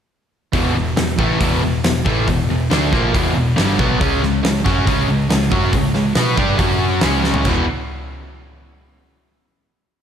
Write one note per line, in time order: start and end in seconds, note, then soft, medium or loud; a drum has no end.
0.53 0.74 E1 medium
0.53 0.74 E2 medium
0.53 0.74 B2 loud
0.53 0.75 E3 loud
0.53 kick loud
0.53 open hi-hat medium
0.75 0.96 E1 medium
0.75 0.93 E2 medium
0.75 0.93 B2 medium
0.97 1.18 E1 medium
0.97 1.15 E2 medium
0.97 1.15 B2 medium
0.97 snare loud
0.97 open hi-hat medium
1.19 1.39 A1 loud
1.19 1.39 A2 medium
1.19 1.39 E3 medium
1.19 1.41 A3 medium
1.19 kick loud
1.40 1.61 E1 medium
1.40 1.61 E2 medium
1.40 1.61 B2 loud
1.40 1.62 E3 loud
1.40 kick loud
1.40 open hi-hat medium
1.62 1.83 E1 medium
1.62 1.80 E2 medium
1.62 1.80 B2 medium
1.84 2.05 E1 medium
1.84 2.02 E2 medium
1.84 2.02 B2 medium
1.84 snare loud
1.84 open hi-hat medium
2.05 2.26 A1 medium
2.05 2.26 A2 medium
2.05 2.27 E3 medium
2.05 2.27 A3 loud
2.05 kick loud
2.28 2.48 E1 medium
2.28 2.45 E2 medium
2.28 2.46 B2 medium
2.28 kick medium
2.28 open hi-hat medium
2.49 2.70 E1 medium
2.49 2.67 E2 medium
2.49 2.66 B2 medium
2.70 2.91 D2 loud
2.70 2.92 D3 medium
2.70 2.92 A3 loud
2.70 2.92 D4 loud
2.70 snare loud
2.70 open hi-hat medium
2.93 3.13 A#1 medium
2.93 3.13 A#2 medium
2.93 3.14 F3 medium
2.93 3.14 A#3 loud
2.93 kick loud
2.93 snare soft
3.13 3.34 E1 medium
3.13 3.35 E2 medium
3.13 3.35 B2 loud
3.13 3.35 E3 loud
3.13 kick loud
3.13 open hi-hat medium
3.36 3.56 E1 medium
3.36 3.54 E2 medium
3.36 3.54 B2 medium
3.56 3.78 G1 medium
3.56 3.78 G2 loud
3.56 3.78 D3 loud
3.56 3.78 G3 loud
3.56 snare loud
3.56 open hi-hat medium
3.79 3.99 B1 medium
3.79 4.00 B2 medium
3.79 4.00 F#3 loud
3.79 4.00 B3 loud
3.79 kick loud
4.01 4.21 C#2 medium
4.01 4.20 C#3 loud
4.01 4.21 G#3 loud
4.01 4.22 C#4 loud
4.01 kick loud
4.01 open hi-hat medium
4.22 4.43 C#2 medium
4.22 4.39 C#3 medium
4.22 4.40 G#3 medium
4.22 snare soft
4.43 4.64 C#2 medium
4.43 4.61 C#3 medium
4.43 4.61 G#3 medium
4.43 snare loud
4.43 open hi-hat medium
4.64 4.86 F#2 medium
4.64 4.86 F#3 medium
4.64 4.85 C#4 medium
4.64 4.86 F#4 loud
4.64 kick loud
4.64 snare soft
4.86 5.07 C#2 loud
4.86 5.07 C#3 medium
4.86 5.08 G#3 medium
4.86 5.08 C#4 medium
4.86 kick loud
4.86 open hi-hat medium
5.08 5.28 C#2 medium
5.08 5.26 C#3 medium
5.08 5.26 G#3 medium
5.29 5.50 C#2 medium
5.29 5.48 C#3 medium
5.29 5.48 G#3 medium
5.29 snare loud
5.29 open hi-hat medium
5.52 5.72 F#2 medium
5.52 5.73 F#3 medium
5.52 5.73 C#4 medium
5.52 5.74 F#4 medium
5.52 kick loud
5.73 5.93 C#2 medium
5.73 5.91 C#3 medium
5.73 5.91 G#3 medium
5.73 kick medium
5.73 open hi-hat medium
5.95 6.15 C#2 medium
5.95 6.13 C#3 medium
5.95 6.13 G#3 medium
5.95 snare soft
6.15 6.37 B2 loud
6.15 6.38 B3 medium
6.15 6.38 F#4 loud
6.15 6.39 B4 loud
6.15 snare loud
6.15 open hi-hat medium
6.37 6.58 G2 medium
6.37 6.60 G3 medium
6.37 6.60 D4 medium
6.37 6.60 G4 medium
6.37 kick medium
6.59 7.00 F#2 medium
6.59 7.03 F#3 medium
6.59 7.03 C#4 medium
6.59 7.03 F#4 loud
6.59 kick loud
6.59 open hi-hat medium
7.01 7.43 C#2 medium
7.01 7.47 C#3 medium
7.01 snare loud
7.01 open hi-hat medium
7.05 7.47 G#3 medium
7.05 7.47 C#4 loud
7.24 snare medium
7.34 floor tom medium
7.45 7.66 E1 medium
7.45 7.65 E2 medium
7.45 7.65 B2 loud
7.45 kick loud
7.45 crash medium
7.49 7.65 E3 medium